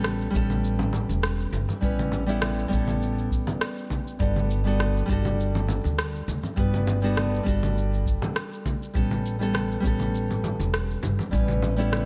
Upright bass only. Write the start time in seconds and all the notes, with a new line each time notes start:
Already playing: A1
0.34 A1
1.09 E1
1.53 G1
1.82 A1
2.72 A1
4.20 G1
5.09 G1
5.85 D2
6.28 D2
6.57 G1
7.47 G1
8.95 A1
9.84 A1
10.60 E1
11.03 G1
11.33 A1